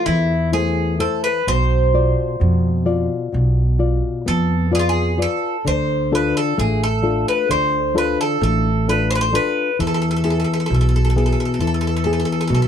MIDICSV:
0, 0, Header, 1, 4, 480
1, 0, Start_track
1, 0, Tempo, 933126
1, 757, Time_signature, 9, 3, 24, 8
1, 3390, Tempo, 909091
1, 6604, End_track
2, 0, Start_track
2, 0, Title_t, "Bouzouki"
2, 0, Program_c, 0, 25
2, 30, Note_on_c, 0, 64, 82
2, 256, Note_off_c, 0, 64, 0
2, 274, Note_on_c, 0, 68, 78
2, 499, Note_off_c, 0, 68, 0
2, 516, Note_on_c, 0, 69, 83
2, 635, Note_off_c, 0, 69, 0
2, 637, Note_on_c, 0, 71, 83
2, 760, Note_off_c, 0, 71, 0
2, 762, Note_on_c, 0, 72, 92
2, 2201, Note_on_c, 0, 69, 84
2, 2245, Note_off_c, 0, 72, 0
2, 2422, Note_off_c, 0, 69, 0
2, 2443, Note_on_c, 0, 68, 80
2, 2466, Note_on_c, 0, 65, 70
2, 2474, Note_off_c, 0, 68, 0
2, 2506, Note_off_c, 0, 65, 0
2, 2516, Note_on_c, 0, 68, 73
2, 2669, Note_off_c, 0, 68, 0
2, 2686, Note_on_c, 0, 69, 82
2, 2903, Note_off_c, 0, 69, 0
2, 2919, Note_on_c, 0, 72, 88
2, 3138, Note_off_c, 0, 72, 0
2, 3164, Note_on_c, 0, 71, 81
2, 3269, Note_off_c, 0, 71, 0
2, 3276, Note_on_c, 0, 69, 85
2, 3390, Note_off_c, 0, 69, 0
2, 3392, Note_on_c, 0, 68, 77
2, 3504, Note_off_c, 0, 68, 0
2, 3519, Note_on_c, 0, 69, 82
2, 3741, Note_off_c, 0, 69, 0
2, 3756, Note_on_c, 0, 71, 80
2, 3868, Note_off_c, 0, 71, 0
2, 3875, Note_on_c, 0, 72, 93
2, 4100, Note_off_c, 0, 72, 0
2, 4123, Note_on_c, 0, 71, 84
2, 4242, Note_off_c, 0, 71, 0
2, 4244, Note_on_c, 0, 69, 79
2, 4357, Note_off_c, 0, 69, 0
2, 4364, Note_on_c, 0, 69, 72
2, 4604, Note_off_c, 0, 69, 0
2, 4606, Note_on_c, 0, 71, 77
2, 4716, Note_off_c, 0, 71, 0
2, 4718, Note_on_c, 0, 72, 86
2, 4741, Note_off_c, 0, 72, 0
2, 4743, Note_on_c, 0, 71, 69
2, 4771, Note_off_c, 0, 71, 0
2, 4773, Note_on_c, 0, 72, 84
2, 4839, Note_off_c, 0, 72, 0
2, 4847, Note_on_c, 0, 71, 88
2, 5067, Note_off_c, 0, 71, 0
2, 5085, Note_on_c, 0, 69, 66
2, 5115, Note_off_c, 0, 69, 0
2, 5122, Note_on_c, 0, 69, 56
2, 5154, Note_off_c, 0, 69, 0
2, 5160, Note_on_c, 0, 69, 58
2, 5193, Note_off_c, 0, 69, 0
2, 5200, Note_on_c, 0, 69, 55
2, 5233, Note_off_c, 0, 69, 0
2, 5247, Note_on_c, 0, 69, 61
2, 5271, Note_off_c, 0, 69, 0
2, 5278, Note_on_c, 0, 69, 49
2, 5310, Note_off_c, 0, 69, 0
2, 5316, Note_on_c, 0, 69, 55
2, 5344, Note_off_c, 0, 69, 0
2, 5351, Note_on_c, 0, 69, 51
2, 5385, Note_off_c, 0, 69, 0
2, 5400, Note_on_c, 0, 69, 55
2, 5419, Note_off_c, 0, 69, 0
2, 5425, Note_on_c, 0, 69, 49
2, 5461, Note_off_c, 0, 69, 0
2, 5473, Note_on_c, 0, 69, 56
2, 5501, Note_off_c, 0, 69, 0
2, 5507, Note_on_c, 0, 69, 48
2, 5533, Note_off_c, 0, 69, 0
2, 5540, Note_on_c, 0, 69, 58
2, 5575, Note_off_c, 0, 69, 0
2, 5584, Note_on_c, 0, 69, 45
2, 5611, Note_off_c, 0, 69, 0
2, 5617, Note_on_c, 0, 69, 52
2, 5652, Note_off_c, 0, 69, 0
2, 5659, Note_on_c, 0, 69, 42
2, 5690, Note_off_c, 0, 69, 0
2, 5697, Note_on_c, 0, 69, 52
2, 5730, Note_off_c, 0, 69, 0
2, 5743, Note_on_c, 0, 69, 46
2, 5764, Note_off_c, 0, 69, 0
2, 5771, Note_on_c, 0, 69, 48
2, 5805, Note_off_c, 0, 69, 0
2, 5813, Note_on_c, 0, 69, 38
2, 5845, Note_off_c, 0, 69, 0
2, 5855, Note_on_c, 0, 69, 46
2, 5884, Note_off_c, 0, 69, 0
2, 5890, Note_on_c, 0, 69, 39
2, 5922, Note_off_c, 0, 69, 0
2, 5930, Note_on_c, 0, 69, 50
2, 5952, Note_off_c, 0, 69, 0
2, 5958, Note_on_c, 0, 69, 47
2, 5994, Note_off_c, 0, 69, 0
2, 6003, Note_on_c, 0, 69, 51
2, 6032, Note_off_c, 0, 69, 0
2, 6038, Note_on_c, 0, 69, 48
2, 6067, Note_off_c, 0, 69, 0
2, 6074, Note_on_c, 0, 69, 53
2, 6104, Note_off_c, 0, 69, 0
2, 6110, Note_on_c, 0, 69, 48
2, 6139, Note_off_c, 0, 69, 0
2, 6146, Note_on_c, 0, 69, 55
2, 6173, Note_off_c, 0, 69, 0
2, 6179, Note_on_c, 0, 69, 50
2, 6219, Note_off_c, 0, 69, 0
2, 6228, Note_on_c, 0, 69, 54
2, 6261, Note_off_c, 0, 69, 0
2, 6268, Note_on_c, 0, 69, 47
2, 6301, Note_off_c, 0, 69, 0
2, 6314, Note_on_c, 0, 69, 51
2, 6344, Note_off_c, 0, 69, 0
2, 6350, Note_on_c, 0, 69, 48
2, 6373, Note_off_c, 0, 69, 0
2, 6380, Note_on_c, 0, 69, 52
2, 6411, Note_off_c, 0, 69, 0
2, 6417, Note_on_c, 0, 69, 45
2, 6452, Note_off_c, 0, 69, 0
2, 6461, Note_on_c, 0, 69, 61
2, 6491, Note_off_c, 0, 69, 0
2, 6497, Note_on_c, 0, 69, 52
2, 6528, Note_off_c, 0, 69, 0
2, 6535, Note_on_c, 0, 69, 59
2, 6568, Note_off_c, 0, 69, 0
2, 6575, Note_on_c, 0, 69, 53
2, 6604, Note_off_c, 0, 69, 0
2, 6604, End_track
3, 0, Start_track
3, 0, Title_t, "Nylon-string guitar"
3, 0, Program_c, 1, 24
3, 0, Note_on_c, 1, 64, 43
3, 0, Note_on_c, 1, 69, 45
3, 0, Note_on_c, 1, 72, 54
3, 31, Note_on_c, 1, 52, 60
3, 174, Note_off_c, 1, 64, 0
3, 174, Note_off_c, 1, 69, 0
3, 175, Note_off_c, 1, 72, 0
3, 269, Note_on_c, 1, 64, 47
3, 273, Note_on_c, 1, 57, 39
3, 275, Note_on_c, 1, 72, 51
3, 501, Note_off_c, 1, 52, 0
3, 504, Note_off_c, 1, 64, 0
3, 510, Note_off_c, 1, 72, 0
3, 510, Note_on_c, 1, 64, 49
3, 513, Note_on_c, 1, 69, 40
3, 518, Note_on_c, 1, 72, 55
3, 660, Note_off_c, 1, 57, 0
3, 706, Note_off_c, 1, 64, 0
3, 708, Note_off_c, 1, 69, 0
3, 709, Note_off_c, 1, 72, 0
3, 759, Note_on_c, 1, 47, 68
3, 996, Note_on_c, 1, 65, 43
3, 1002, Note_on_c, 1, 74, 51
3, 1226, Note_off_c, 1, 47, 0
3, 1234, Note_on_c, 1, 47, 63
3, 1383, Note_off_c, 1, 65, 0
3, 1386, Note_off_c, 1, 74, 0
3, 1470, Note_on_c, 1, 65, 47
3, 1472, Note_on_c, 1, 74, 56
3, 1703, Note_off_c, 1, 47, 0
3, 1710, Note_on_c, 1, 47, 55
3, 1858, Note_off_c, 1, 65, 0
3, 1859, Note_off_c, 1, 74, 0
3, 1950, Note_on_c, 1, 65, 46
3, 1954, Note_on_c, 1, 74, 52
3, 2180, Note_off_c, 1, 47, 0
3, 2192, Note_on_c, 1, 59, 64
3, 2337, Note_off_c, 1, 65, 0
3, 2339, Note_off_c, 1, 74, 0
3, 2425, Note_on_c, 1, 65, 48
3, 2430, Note_on_c, 1, 71, 44
3, 2431, Note_on_c, 1, 74, 50
3, 2658, Note_off_c, 1, 65, 0
3, 2659, Note_off_c, 1, 59, 0
3, 2661, Note_off_c, 1, 71, 0
3, 2664, Note_off_c, 1, 74, 0
3, 2664, Note_on_c, 1, 65, 44
3, 2667, Note_on_c, 1, 71, 41
3, 2670, Note_on_c, 1, 74, 53
3, 2859, Note_off_c, 1, 65, 0
3, 2861, Note_off_c, 1, 71, 0
3, 2863, Note_off_c, 1, 74, 0
3, 2905, Note_on_c, 1, 50, 70
3, 3147, Note_on_c, 1, 62, 47
3, 3149, Note_on_c, 1, 65, 45
3, 3152, Note_on_c, 1, 69, 50
3, 3370, Note_off_c, 1, 50, 0
3, 3384, Note_on_c, 1, 57, 63
3, 3532, Note_off_c, 1, 62, 0
3, 3533, Note_off_c, 1, 65, 0
3, 3535, Note_off_c, 1, 69, 0
3, 3619, Note_on_c, 1, 62, 50
3, 3622, Note_on_c, 1, 65, 44
3, 3626, Note_on_c, 1, 69, 56
3, 3857, Note_off_c, 1, 57, 0
3, 3867, Note_on_c, 1, 50, 59
3, 4012, Note_off_c, 1, 62, 0
3, 4013, Note_off_c, 1, 65, 0
3, 4016, Note_off_c, 1, 69, 0
3, 4105, Note_on_c, 1, 62, 45
3, 4108, Note_on_c, 1, 65, 47
3, 4111, Note_on_c, 1, 69, 50
3, 4340, Note_off_c, 1, 50, 0
3, 4354, Note_on_c, 1, 57, 72
3, 4496, Note_off_c, 1, 62, 0
3, 4497, Note_off_c, 1, 65, 0
3, 4499, Note_off_c, 1, 69, 0
3, 4598, Note_on_c, 1, 62, 47
3, 4600, Note_on_c, 1, 65, 41
3, 4603, Note_on_c, 1, 69, 54
3, 4823, Note_off_c, 1, 57, 0
3, 4830, Note_off_c, 1, 62, 0
3, 4831, Note_off_c, 1, 65, 0
3, 4834, Note_off_c, 1, 69, 0
3, 4835, Note_on_c, 1, 62, 46
3, 4838, Note_on_c, 1, 65, 43
3, 4841, Note_on_c, 1, 69, 52
3, 5030, Note_off_c, 1, 62, 0
3, 5030, Note_off_c, 1, 65, 0
3, 5032, Note_off_c, 1, 69, 0
3, 5081, Note_on_c, 1, 52, 63
3, 5316, Note_on_c, 1, 59, 45
3, 5321, Note_on_c, 1, 64, 41
3, 5323, Note_on_c, 1, 68, 52
3, 5545, Note_off_c, 1, 52, 0
3, 5565, Note_on_c, 1, 47, 58
3, 5700, Note_off_c, 1, 59, 0
3, 5703, Note_off_c, 1, 64, 0
3, 5704, Note_off_c, 1, 68, 0
3, 5804, Note_on_c, 1, 59, 52
3, 5805, Note_on_c, 1, 64, 43
3, 5808, Note_on_c, 1, 68, 55
3, 6025, Note_off_c, 1, 47, 0
3, 6040, Note_on_c, 1, 52, 54
3, 6183, Note_off_c, 1, 59, 0
3, 6183, Note_off_c, 1, 64, 0
3, 6183, Note_off_c, 1, 68, 0
3, 6276, Note_on_c, 1, 59, 46
3, 6280, Note_on_c, 1, 64, 46
3, 6281, Note_on_c, 1, 68, 50
3, 6499, Note_off_c, 1, 52, 0
3, 6512, Note_on_c, 1, 47, 66
3, 6604, Note_off_c, 1, 47, 0
3, 6604, Note_off_c, 1, 59, 0
3, 6604, Note_off_c, 1, 64, 0
3, 6604, Note_off_c, 1, 68, 0
3, 6604, End_track
4, 0, Start_track
4, 0, Title_t, "Upright bass"
4, 0, Program_c, 2, 32
4, 35, Note_on_c, 2, 40, 90
4, 543, Note_off_c, 2, 40, 0
4, 757, Note_on_c, 2, 35, 84
4, 1095, Note_off_c, 2, 35, 0
4, 1240, Note_on_c, 2, 41, 90
4, 1577, Note_off_c, 2, 41, 0
4, 1719, Note_on_c, 2, 35, 84
4, 2055, Note_off_c, 2, 35, 0
4, 2198, Note_on_c, 2, 41, 95
4, 2699, Note_off_c, 2, 41, 0
4, 2913, Note_on_c, 2, 38, 92
4, 3246, Note_off_c, 2, 38, 0
4, 3386, Note_on_c, 2, 33, 84
4, 3727, Note_off_c, 2, 33, 0
4, 3868, Note_on_c, 2, 38, 77
4, 4209, Note_off_c, 2, 38, 0
4, 4353, Note_on_c, 2, 33, 94
4, 4860, Note_off_c, 2, 33, 0
4, 5084, Note_on_c, 2, 40, 84
4, 5418, Note_off_c, 2, 40, 0
4, 5561, Note_on_c, 2, 35, 85
4, 5894, Note_off_c, 2, 35, 0
4, 6030, Note_on_c, 2, 40, 80
4, 6364, Note_off_c, 2, 40, 0
4, 6510, Note_on_c, 2, 35, 94
4, 6604, Note_off_c, 2, 35, 0
4, 6604, End_track
0, 0, End_of_file